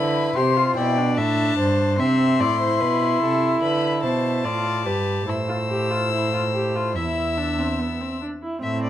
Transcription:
0.00 0.35 D3 medium
0.00 0.37 E4 medium
0.00 0.38 B4 medium
0.00 0.33 B5 medium
0.36 0.76 C3 medium
0.36 0.58 G4 medium
0.36 0.79 C5 medium
0.36 0.76 C6 medium
0.57 0.76 F4 medium
0.76 1.19 B2 medium
0.76 0.99 E4 medium
0.76 1.19 D5 medium
0.76 1.17 G5 medium
0.97 1.98 D4 medium
1.17 1.58 A2 medium
1.17 1.58 E5 medium
1.17 1.97 A5 medium
1.58 2.00 G2 medium
1.58 2.01 C5 medium
1.99 2.41 C3 medium
1.99 2.41 C4 medium
1.99 2.42 E5 medium
1.99 3.59 C6 medium
2.40 2.82 A2 medium
2.40 4.45 E4 medium
2.40 2.60 D5 medium
2.61 2.83 C5 medium
2.80 3.21 B2 medium
2.80 3.22 B4 medium
3.21 3.61 C3 medium
3.21 3.62 A4 medium
3.62 4.05 D3 medium
3.62 4.03 B4 medium
3.62 4.02 B5 medium
4.03 4.46 B2 medium
4.03 4.46 C5 medium
4.03 5.31 A5 medium
4.43 4.87 A2 medium
4.43 4.85 F4 medium
4.43 4.87 D5 medium
4.85 5.27 G2 medium
4.85 5.26 G4 medium
4.85 5.28 B4 medium
5.27 6.97 A2 medium
5.27 5.35 E4 medium
5.27 6.97 C5 medium
5.27 6.96 E6 medium
5.48 5.56 F4 medium
5.69 5.92 G4 medium
5.91 6.12 F4 medium
6.12 6.32 E4 medium
6.33 6.41 F4 medium
6.54 6.77 G4 medium
6.75 6.95 F4 soft
6.95 8.21 E2 medium
6.95 7.39 E4 medium
6.95 8.21 E5 medium
6.95 8.19 E6 medium
7.37 7.60 D4 medium
7.59 7.81 C4 medium
7.79 8.02 B3 medium
8.00 8.21 C4 soft
8.21 8.29 D4 soft
8.43 8.62 E4 soft
8.62 8.90 A2 medium
8.62 8.90 C4 medium
8.62 8.82 E5 medium
8.83 8.90 D5 medium

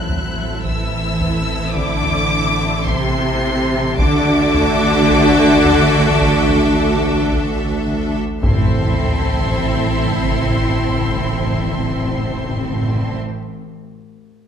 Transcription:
0.00 3.94 A1 medium
0.00 1.16 A2 medium
0.00 0.65 F#3 medium
0.00 3.94 C4 medium
0.00 3.94 E4 medium
0.00 3.94 A4 medium
0.00 3.94 E5 medium
0.00 0.64 F#6 medium
0.00 impact medium
0.09 taiko low medium
0.64 1.74 E3 medium
0.64 1.73 E6 loud
0.64 taiko medium
1.21 taiko low medium
1.75 2.87 D3 medium
1.75 2.87 D6 loud
1.75 taiko medium
2.04 taiko low medium
2.87 3.96 C3 loud
2.87 3.98 C6 loud
2.87 taiko medium
3.98 8.38 A1 loud
3.98 8.19 D2 loud
3.98 7.32 D3 loud
3.98 8.19 D4 loud
3.98 8.23 F#4 loud
3.98 8.18 A4 loud
3.98 8.18 E5 loud
3.98 7.27 D6 loud
3.98 taiko loud
4.54 taiko low medium
5.10 taiko medium
5.65 taiko low medium
6.21 taiko medium
6.49 taiko low medium
7.32 taiko medium
8.42 13.16 A1 medium
8.42 8.48 A2 medium
8.42 13.16 C4 medium
8.42 13.17 E4 medium
8.42 13.16 A4 medium
8.42 13.16 E5 medium
8.42 13.16 C6 medium
8.42 taiko loud
8.42 sub drop medium
8.48 8.55 A2 medium
8.55 8.61 A2 medium
8.61 8.67 A2 medium
8.67 8.74 A2 loud
8.74 8.81 A2 medium
8.81 8.86 A2 medium
8.86 8.93 A2 medium
8.93 9.00 A2 medium
9.00 9.06 A2 medium
9.07 9.13 A2 medium
9.13 9.19 A2 medium
9.19 9.26 A2 medium
9.26 9.33 A2 medium
9.33 9.39 A2 medium
9.40 9.46 A2 medium
9.46 9.53 A2 medium
9.53 9.59 A2 medium
9.59 9.66 A2 medium
9.66 9.72 A2 medium
9.73 9.79 A2 medium
9.79 9.86 A2 medium
9.86 9.92 A2 medium
9.92 9.98 A2 medium
9.98 10.05 A2 medium
10.05 10.11 A2 medium
10.12 10.18 A2 medium
10.18 10.24 A2 medium
10.25 10.31 A2 medium
10.31 10.38 A2 medium
10.38 10.44 A2 medium
10.44 10.50 A2 medium
10.50 10.57 A2 medium
10.57 10.63 A2 medium
10.63 10.70 A2 medium
10.70 10.76 A2 medium
10.76 10.82 A2 medium
10.82 10.89 A2 medium
10.89 10.95 A2 medium
10.95 11.01 A2 medium
11.01 11.08 A2 medium
11.08 11.14 A2 medium
11.14 11.21 A2 medium
11.21 11.27 A2 medium
11.27 11.33 A2 medium
11.33 11.40 A2 medium
11.40 11.46 A2 medium
11.46 11.53 A2 medium
11.53 11.59 A2 medium
11.59 11.66 A2 medium
11.66 11.72 A2 medium
11.72 11.79 A2 medium
11.79 11.85 A2 medium
11.86 11.92 A2 medium
11.92 11.98 A2 loud
11.98 12.05 A2 medium
12.05 12.11 A2 medium
12.12 12.18 A2 medium
12.18 12.24 A2 medium
12.25 12.31 A2 medium
12.31 12.38 A2 medium
12.38 12.44 A2 medium
12.44 12.50 A2 medium
12.50 12.57 A2 medium
12.57 12.63 A2 medium
12.63 12.69 A2 medium
12.70 12.76 A2 medium
12.76 12.82 A2 medium
12.82 12.89 A2 medium
12.89 12.95 A2 medium
12.95 13.02 A2 medium
13.02 13.08 A2 medium
13.08 13.15 A2 medium

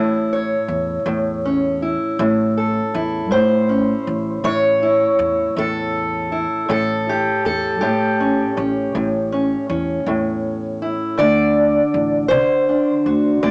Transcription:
0.00 0.52 A1 medium
0.00 1.06 A2 medium
0.00 1.82 E4 soft
0.00 0.31 A4 medium
0.33 2.57 C#5 soft
0.68 0.98 E2 medium
1.06 1.95 E2 medium
1.06 2.19 A2 medium
1.45 3.35 C#4 soft
1.82 2.95 E4 soft
2.19 2.78 A1 medium
2.19 3.30 A2 medium
2.57 3.31 A4 soft
2.94 3.32 E2 medium
2.94 4.81 E4 soft
3.31 4.43 A2 medium
3.31 3.91 A2 medium
3.31 4.44 C5 medium
3.69 6.65 C#4 soft
4.07 4.37 A1 medium
4.44 5.03 A1 medium
4.44 5.56 A2 medium
4.44 5.57 C#5 medium
4.83 6.31 E4 soft
5.19 5.49 E2 medium
5.57 6.45 E2 medium
5.57 6.67 A2 medium
5.57 6.70 A4 medium
6.32 7.07 E4 soft
6.69 7.28 A1 medium
6.69 7.81 A2 medium
6.69 7.45 A4 medium
7.09 7.80 G4 medium
7.45 7.83 E2 medium
7.45 8.58 A4 medium
7.81 8.94 A2 medium
7.81 8.41 A2 medium
7.81 10.81 G4 medium
8.20 8.56 C#4 soft
8.57 8.87 A1 medium
8.57 9.31 C#4 soft
8.95 9.53 A1 medium
8.95 10.06 A2 medium
9.32 9.68 C#4 soft
9.69 9.99 E2 medium
9.69 11.14 C#4 soft
10.06 10.95 E2 medium
10.06 11.19 A2 medium
10.82 11.19 E4 soft
11.18 11.78 D2 medium
11.18 12.30 D3 medium
11.18 12.28 D5 loud
11.94 12.32 A1 medium
12.28 13.42 D3 medium
12.28 12.89 D3 medium
12.28 13.42 C5 medium
12.69 13.51 D4 soft
13.06 13.35 D2 medium
13.06 13.51 F#4 soft
13.43 13.51 D2 medium
13.43 13.51 D3 medium
13.43 13.51 D5 medium

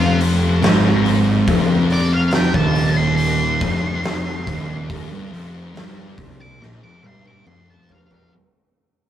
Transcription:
0.00 0.59 F1 medium
0.00 0.62 F2 loud
0.00 0.18 F4 medium
0.21 open hi-hat medium
0.63 1.44 G#1 medium
0.63 1.47 G#2 loud
0.63 snare loud
0.63 open hi-hat medium
1.06 open hi-hat medium
1.47 2.50 F1 medium
1.47 2.53 F2 loud
1.47 kick loud
1.47 open hi-hat medium
1.90 2.12 D5 loud
1.90 open hi-hat soft
2.14 2.34 F5 medium
2.31 2.55 G5 loud
2.31 snare loud
2.31 open hi-hat medium
2.54 3.57 D#1 medium
2.54 3.59 D#2 loud
2.54 2.96 A5 loud
2.54 kick loud
2.75 open hi-hat medium
2.97 3.15 C6 medium
3.16 4.84 C6 medium
3.16 open hi-hat medium
3.61 4.42 F1 loud
3.61 4.45 F2 loud
3.61 kick loud
3.61 open hi-hat medium
4.04 snare loud
4.04 open hi-hat medium
4.46 4.86 D#1 loud
4.46 4.88 D#2 loud
4.46 kick loud
4.46 open hi-hat medium
4.89 5.09 D#1 medium
4.89 5.09 D#2 loud
4.89 kick loud
4.89 open hi-hat medium
5.11 5.31 G1 medium
5.11 5.31 G2 medium
5.32 5.72 F1 loud
5.32 5.73 F2 loud
5.32 open hi-hat medium
5.75 6.14 G1 medium
5.75 6.16 G2 loud
5.75 snare loud
5.75 open hi-hat medium
6.18 6.57 C2 medium
6.18 6.60 C3 loud
6.18 kick loud
6.18 open hi-hat medium
6.41 6.61 D6 medium
6.60 6.80 A#1 medium
6.60 6.80 A#2 medium
6.60 snare medium
6.82 7.02 F1 medium
6.82 7.02 F2 medium
6.82 7.03 D6 medium
7.03 7.43 G1 medium
7.03 7.45 G2 medium
7.03 7.26 C6 loud
7.03 high tom medium
7.25 7.47 D6 medium
7.25 high tom medium
7.46 8.28 F1 medium
7.46 8.31 F2 loud
7.46 7.67 C6 medium
7.46 mid tom medium
7.70 7.89 A5 medium
7.89 8.32 F5 loud
7.89 floor tom medium
8.11 floor tom medium

